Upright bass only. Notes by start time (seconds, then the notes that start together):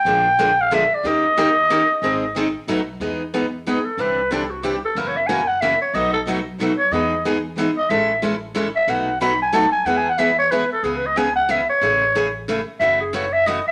0.05 A#1
1.04 D#2
2.02 G#1
2.67 B1
3.00 E2
3.97 C2
4.95 F#1
5.93 B1
6.91 E2
7.90 A1
8.87 B1
9.85 E2
10.83 C#2
11.81 A1
12.80 F#1